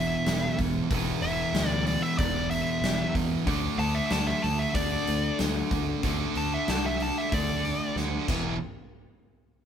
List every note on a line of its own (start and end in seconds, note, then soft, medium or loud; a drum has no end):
0.00 0.16 E1 medium
0.00 0.88 E2 medium
0.00 0.89 E2 medium
0.00 0.89 B2 medium
0.00 0.90 B2 medium
0.00 0.90 E3 medium
0.00 0.90 E3 loud
0.00 0.58 E5 medium
0.26 0.48 E1 medium
0.26 snare loud
0.26 open hi-hat medium
0.59 0.80 E1 medium
0.59 kick medium
0.59 open hi-hat medium
0.89 1.12 E1 loud
0.89 2.16 E2 medium
0.89 2.17 B2 medium
0.89 kick loud
0.89 open hi-hat medium
0.93 2.18 E3 loud
1.22 1.44 E1 medium
1.22 1.68 E5 loud
1.22 open hi-hat soft
1.54 1.96 D2 medium
1.54 snare loud
1.54 open hi-hat medium
1.68 1.84 D5 loud
1.86 2.02 D5 medium
1.86 open hi-hat medium
2.02 2.18 E5 loud
2.17 2.61 E1 medium
2.17 3.44 E2 medium
2.17 3.45 B2 medium
2.17 2.49 D5 medium
2.17 kick loud
2.17 open hi-hat medium
2.22 3.47 E3 medium
2.50 3.13 E5 medium
2.50 open hi-hat soft
2.82 3.03 E1 medium
2.82 snare loud
2.82 open hi-hat medium
3.15 3.36 E2 medium
3.15 kick medium
3.15 open hi-hat soft
3.45 3.68 D2 loud
3.45 4.73 D3 medium
3.45 4.75 A3 medium
3.45 4.77 D4 loud
3.45 kick loud
3.45 open hi-hat medium
3.78 4.00 D2 medium
3.78 3.95 A5 loud
3.78 open hi-hat soft
3.95 4.10 E5 medium
4.10 4.32 D2 medium
4.10 4.27 A5 medium
4.10 snare loud
4.10 open hi-hat medium
4.27 4.42 E5 medium
4.42 4.65 D2 medium
4.42 4.58 A5 medium
4.42 open hi-hat medium
4.59 4.75 E5 loud
4.73 4.96 D2 medium
4.73 6.00 D3 medium
4.73 6.01 A3 medium
4.73 5.37 D5 medium
4.73 kick loud
4.73 open hi-hat medium
4.77 6.02 D4 medium
5.07 5.29 D2 medium
5.07 open hi-hat soft
5.39 5.61 D2 medium
5.39 snare loud
5.39 open hi-hat medium
5.71 5.92 D2 medium
5.71 kick medium
5.71 open hi-hat medium
6.03 6.25 D2 medium
6.03 7.29 D3 medium
6.03 7.30 A3 medium
6.03 7.31 D4 medium
6.03 kick loud
6.03 open hi-hat medium
6.35 6.57 D2 medium
6.35 6.52 A5 loud
6.35 open hi-hat soft
6.54 6.68 E5 medium
6.68 7.10 C2 medium
6.68 6.84 A5 medium
6.68 snare loud
6.68 open hi-hat medium
6.86 7.00 E5 medium
7.00 7.17 A5 medium
7.00 open hi-hat soft
7.18 7.34 E5 medium
7.32 7.75 D2 medium
7.32 8.28 D3 medium
7.32 8.29 A3 medium
7.32 8.30 D4 medium
7.32 7.95 D5 medium
7.32 kick loud
7.32 open hi-hat medium
7.65 open hi-hat soft
7.96 8.17 D2 medium
7.96 snare medium
8.28 8.58 E1 medium
8.28 8.54 E2 medium
8.28 8.54 B2 medium
8.28 8.55 E3 loud
8.28 kick loud
8.28 crash medium